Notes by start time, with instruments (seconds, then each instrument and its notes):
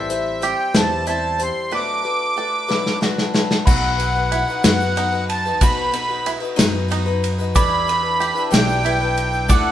Already playing: upright bass A1, steel-string acoustic guitar E3 G3, five-string banjo A4, accordion E5
0.10 steel-string acoustic guitar G3 C4 E4 C5, closed hi-hat
0.41 steel-string acoustic guitar G3 C4 E4 C5, five-string banjo G4, accordion G5, closed hi-hat
0.74 upright bass E2, steel-string acoustic guitar A2 E3 G3 C4 E4 C5, accordion A5, snare, closed hi-hat
1.06 steel-string acoustic guitar G3 C4 E4 C5, five-string banjo E4, accordion A5, closed hi-hat
1.38 steel-string acoustic guitar G3 C4 E4 C5, accordion C6, closed hi-hat
1.71 steel-string acoustic guitar B2 F#3 A3 D4 F#4 B4, five-string banjo B4, accordion D6
2.04 steel-string acoustic guitar A3 D4 F#4 B4
2.36 steel-string acoustic guitar A3 D4 F#4 B4, five-string banjo A4
2.68 steel-string acoustic guitar B2 F#3 A3 D4 F#4 B4, snare
2.86 snare
3.01 steel-string acoustic guitar A3 D4 F#4 B4, five-string banjo F#4, snare
3.18 snare
3.34 steel-string acoustic guitar A3 D4 F#4 B4, snare
3.51 snare
3.66 upright bass B1, steel-string acoustic guitar B3 D#4 F#4 B4, five-string banjo F#4, accordion F#5, glockenspiel B5, kick, crash, shaker
3.98 steel-string acoustic guitar B3 D#4 F#4 B4, ride, shaker
4.15 steel-string acoustic guitar D#4 F#4 B4
4.32 five-string banjo E4, ride, shaker
4.48 steel-string acoustic guitar D#4 F#4 B4, shaker
4.64 upright bass F#2, steel-string acoustic guitar B3 D#4 F#4 B4, accordion F#5, snare, ride, shaker
4.80 shaker
4.96 steel-string acoustic guitar B3 D#4 F#4 B4, five-string banjo D#4, ride
5.12 steel-string acoustic guitar D#4 F#4 B4
5.29 accordion A5, ride, shaker
5.45 steel-string acoustic guitar D#4 F#4 B4, shaker
5.61 upright bass B1, steel-string acoustic guitar B3 D#4 F#4 B4, five-string banjo F#4, accordion B5, kick, ride, shaker
5.92 steel-string acoustic guitar B3 D#4 F#4 B4, ride, shaker
6.09 steel-string acoustic guitar D#4 F#4 B4
6.26 five-string banjo E4, ride, shaker
6.40 steel-string acoustic guitar D#4 F#4 B4, shaker
6.56 upright bass F#2, steel-string acoustic guitar B3 D#4 F#4 B4, snare, ride, shaker
6.88 steel-string acoustic guitar B3 D#4 F#4 B4, five-string banjo D#4, ride
7.06 steel-string acoustic guitar D#4 F#4 B4
7.24 ride, shaker
7.38 steel-string acoustic guitar D#4 F#4 B4, shaker
7.55 upright bass E2, steel-string acoustic guitar E3 G3 D4 E4 B4, five-string banjo A4, accordion B5, glockenspiel D6, kick, ride, shaker
7.88 steel-string acoustic guitar G3 D4 E4 B4, ride, shaker
8.03 steel-string acoustic guitar D4 E4 B4
8.20 five-string banjo G4, ride, shaker
8.35 steel-string acoustic guitar D4 E4 B4, shaker
8.51 upright bass B1, steel-string acoustic guitar E3 G3 D4 E4 B4, accordion G5, snare, ride, shaker
8.69 shaker
8.83 steel-string acoustic guitar G3 D4 E4 B4, five-string banjo E4, ride
9.00 steel-string acoustic guitar D4 E4 B4
9.17 ride, shaker
9.31 steel-string acoustic guitar D4 E4 B4, shaker
9.48 upright bass D2, steel-string acoustic guitar D3 A3 E4 F#4 A4, five-string banjo A4, accordion F#5, glockenspiel D6, kick, ride, shaker